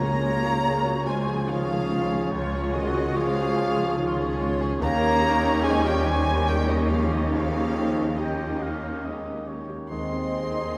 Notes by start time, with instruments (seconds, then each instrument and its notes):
Already playing: grand piano C#2, cello section C#2, double bass section C#2, timpani C#3, french horn section A#3, clarinet F4, flute C#5, oboe C#5, violin section A#5, violin A#5
0.00 grand piano C#4, viola section C#4 G#4, violin section G#4
0.23 viola section G#3 F4, grand piano G#4, violin section C#5
0.44 grand piano C#4, viola section C#4 G#4, violin section G#4
0.65 viola section G#3 F4, grand piano G#4, violin section C#5
0.86 viola section C#4 G#4, grand piano F#4, violin section G#4
1.07 french horn section G#3, viola section G#3 F4, grand piano G#4, flute C5, violin section C#5 G#5, violin G#5
1.28 grand piano F3, viola section C#4 G#4, violin section G#4
1.48 grand piano D#3, french horn section F3, viola section G#3 F4, flute G#4, violin section C#5 F5, violin F5
1.70 grand piano F3, viola section C#4 G#4, violin section G#4
1.90 viola section G#3 F4, grand piano C#4, violin section C#5
2.11 viola section C#4 G#4, grand piano G#4, violin section G#4
2.31 grand piano C#2, french horn section C#3, viola section G#3 F4, flute F4, violin section C#5, violin C#5
2.52 grand piano C#4, viola section C#4 G#4, violin section G#4
2.73 french horn section D#3, viola section G#3 F4, flute F#4, grand piano G#4, violin section C#5 D#5, violin D#5
2.94 grand piano C#4, viola section C#4 G#4, violin section G#4
3.14 french horn section F3, viola section G#3 F4, grand piano G#4, flute G#4, violin section C#5 F5, violin F5
3.34 viola section C#4 G#4, grand piano F#4, violin section G#4
3.56 viola section G#3 F4, grand piano G#4, violin section C#5
3.77 grand piano F3, viola section C#4 G#4, violin section G#4
3.97 grand piano D#3, viola section G#3 F4, violin section C#5
4.18 grand piano F3, viola section C#4 G#4, violin section G#4
4.39 viola section G#3 F4, grand piano C#4, violin section C#5
4.60 viola section C#4 G#4, violin section G#4, grand piano G#4
4.80 cello section D#2, grand piano D#2, double bass section D#2, french horn section A#3, viola section C#4 D#4, violin section G4 A#5, clarinet G4, flute C#5, oboe C#5, violin A#5
5.01 grand piano C#4
5.22 grand piano G4
5.43 grand piano C#4
5.63 french horn section G#3, grand piano G4, flute C5, violin section G#5, violin G#5
5.83 french horn section G3, grand piano F4, flute A#4, violin section G5, violin G5
6.04 french horn section G3, grand piano G3, flute C5, violin section G#5, violin G#5
6.26 grand piano A#3
6.47 french horn section G3, grand piano G#3, viola section C#4 D#4, violin section G4 G5, flute A#4, violin G5
6.67 french horn section D#3, grand piano A#3, flute G4, violin D#5, violin section D#5
6.89 french horn section F3, grand piano C#4, flute G#4, violin section F5, violin F5
7.10 french horn section D#3, grand piano G4, flute G4, violin section D#5, violin D#5
7.31 grand piano D#2, french horn section F3, flute G#4, violin section F5, violin F5
7.53 grand piano C#4
7.76 grand piano G5
7.97 grand piano C#4
8.18 french horn section D#3, viola section C#4 D#4, violin section G4 D#5, grand piano G4, flute G4, violin D#5, oboe G5
8.41 grand piano F4
8.62 grand piano G4, oboe F5
8.84 grand piano A#3
9.05 grand piano G#3, oboe D#5
9.26 grand piano A#3
9.48 grand piano C#4, oboe C#5
9.69 grand piano G4
9.89 cello section D#2, double bass section D#2, grand piano D#2, viola section D#3 G#3, french horn section C4, clarinet G#4, violin section G#4 C6, flute D#5, oboe D#5, violin C6
10.12 viola section G#3, grand piano C4
10.33 viola section C4, grand piano G#4
10.54 grand piano C4, viola section D#4